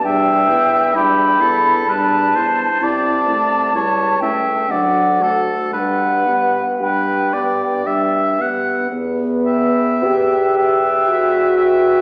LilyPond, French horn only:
\new Staff \with { instrumentName = "French horn" } { \time 3/4 \key g \major \tempo 4 = 60 g8 b8 g8 b8 g8 b8 | c'8 a8 g8 a8 fis8 a8 | g8 b8 g8 b8 g8 b8 | \key e \minor b4 g'4 fis'4 | }